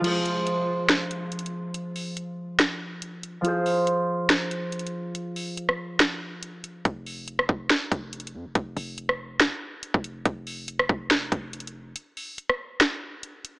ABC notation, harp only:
X:1
M:4/4
L:1/8
Q:1/4=141
K:Fm
V:1 name="Harp"
[F,FAc]8- | [F,FAc]8 | [F,FAc]8- | [F,FAc]8 |
z8 | z8 | z8 | z8 |]